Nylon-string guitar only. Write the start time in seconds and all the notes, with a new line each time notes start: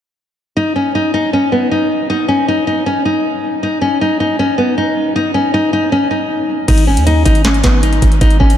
0.57 D#4
0.76 C#4
0.95 D#4
1.14 D#4
1.33 C#4
1.52 B3
1.71 D#4
2.10 D#4
2.28 C#4
2.48 D#4
2.67 D#4
2.86 C#4
3.05 D#4
3.63 D#4
3.81 C#4
4.01 D#4
4.20 D#4
4.39 C#4
4.58 B3
4.78 D#4
5.16 D#4
5.34 C#4
5.54 D#4
5.73 D#4
5.92 C#4
6.11 D#4
6.68 D#4
6.87 C#4
7.06 D#4
7.25 D#4
7.45 C#4
7.64 B3
7.83 D#4
8.21 D#4
8.40 C#4